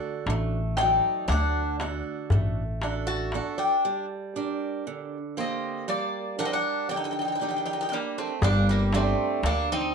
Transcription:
Already playing: D3 D4 F#4 A4
0.26 A1 A3, darbuka tek
0.77 F#3 D#4 A4 G5, darbuka tek
0.81 D5
1.28 D2 D4 F#5, darbuka tek
1.32 D3
1.80 D4 F#4 A4, darbuka tek
2.30 A1 A3, darbuka dum
2.82 D4 F#4 A4, darbuka tek
3.07 F#4 A5, darbuka tek
3.32 D4 F#4 A4, darbuka tek
3.58 D4 G5, darbuka tek
3.85 G3
4.36 D4 G4 A#4
4.87 D3
5.37 A#3 C4 G4 A#4 D#5
5.88 G3 A#3 D5
6.38 D4 G4 A#4 F#5
6.45 C4 D#5
6.53 D4 F#5
6.89 D3 D4 G5
6.96 D#4 G5
7.04 D#4 G5
7.11 D#4 G5
7.19 D#4 G5
7.25 D#4 G5
7.32 D#4 G5
7.40 D4 D#4 G4 A#4 G5
7.49 D#4 G5
7.56 D#4 G5
7.66 D#4 G5
7.73 D#4 G5
7.81 D#4 G5
7.89 D4 D#4 G4 G5
7.93 G3 A#3 A#4
8.18 A3 C4
8.42 G1 G3 A#3 D4, darbuka dum
8.68 G3 A#3, darbuka tek
8.93 A3 C4 D4 G4 D5, darbuka tek
9.43 D2 D3 A#3 D4, darbuka tek
9.69 C4 D#4, darbuka tek

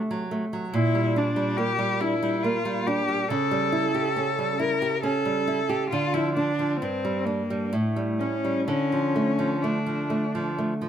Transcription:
Already playing: C3 A3
0.11 F#3
0.31 A3
0.53 F#3
0.73 A#2 E4
0.95 G3
1.16 D4
1.36 G3
1.57 A#3 G4
1.79 G3
2.01 D4 E4
2.23 G3
2.43 A#3 F4
2.65 G3
2.87 D4 G4
3.08 G3
3.29 C#3 A4
3.51 G3
3.72 E4
3.95 G4
4.16 C#4
4.38 G3
4.59 E4 A#4
4.82 G4
5.03 C#4 A4
5.25 G3
5.48 E4
5.69 G4
5.90 D3 F4
6.14 F3 E4
6.36 D4
6.59 F3
6.80 G2 C4
7.05 G3
7.25 A#3 D4
7.50 G3
7.72 A2 A3
7.96 G3
8.19 C#4
8.45 G3
8.68 D3 C#4
8.92 F3
9.16 A3
9.39 F3
9.62 A3 D4
9.86 F3
10.10 A3
10.35 F3
10.58 A3
10.81 F3

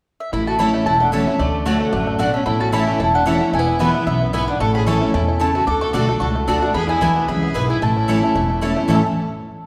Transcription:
0.20 E5
0.32 A1 A2 E4 B5
0.47 A3 F#4 A5
0.59 E3 A3 C#4 E4 C#5 A5 B5
0.74 A3
0.86 E1 E2 E4 A5
1.00 A3 D4 F#5
1.12 E3 A3 C#4 E4 A4 C#5 E5 A5
1.27 C#4 E4
1.39 D2 D3 A3 D5
1.65 D3 A3 D4 F#4 C#5 D5 F#5
1.81 A3
1.93 A1 F#2 A3 F#4 D5
2.07 A3
2.19 B2 A3 D4 F#4 D5 F#5
2.34 A3 C#4 E5
2.46 A1 A2 A3 E4 B5
2.60 C#4 F#4 A5
2.72 E3 A3 C#4 E4 C#5 A5 B5
2.88 A3
2.99 E1 E2 E4 A5
3.14 A3 D4 F#5
3.26 E3 A3 C#4 E4 C#5 E5 A5
3.41 A3 C#4 E4
3.53 E1 E2 A3 E4 G#5
3.59 B3
3.68 E4
3.79 E3 G#3 B3 E4 B4 F#5 G#5
3.94 B3 E4
4.07 B1 F#2 B3 E4 E5
4.21 B3
4.33 G#2 B3 E4 B4 E5 G#5
4.48 B3 D4 F#5
4.60 A1 A2 A3 A4 C#6
4.75 C#4 G#4 B5
4.86 E3 A3 C#4 E4 A4 C#5 A5 C#6
5.01 C#4 E4
5.14 E2 B2 A3 E4 A5
5.28 E4
5.40 C#3 A3 E4 A4 C#5 A5
5.55 E4 F#4 A5
5.67 D2 D3 F#4 A4 D6
5.81 A3 A4 C#6
5.93 B1 D3 A3 D4 F#4 A4 D5 F#5 D6
6.09 A3 D4 F#4
6.20 C#2 A2 F#4 A4 C#6
6.35 A3
6.47 D2 D3 A3 D4 F#4 A4 D5 F#5
6.62 D4 F#4 F#5
6.74 E2 B3 G#4 B5
6.89 E4 G#5
7.01 D2 E3 G#3 B3 E4 B4 G#5
7.16 B3
7.28 C#2 F#2 E4 G#4 B5
7.43 B3
7.54 B1 G#2 B3 E4 B4 G#5
7.70 B3 E4 G#5
7.82 A1 A2 A3 E4 A5
7.96 C#4
8.08 E3 A3 C#4 E4 C#5 A5
8.22 A3 C#4 E4
8.35 E1 E2 E4
8.50 A3
8.61 E3 A3 C#4 E4 C#5 A5
8.76 A3 C#4 E4
8.88 A1 A2 E3 A3 C#4 E4 C#5 A5
8.93 E4 A4

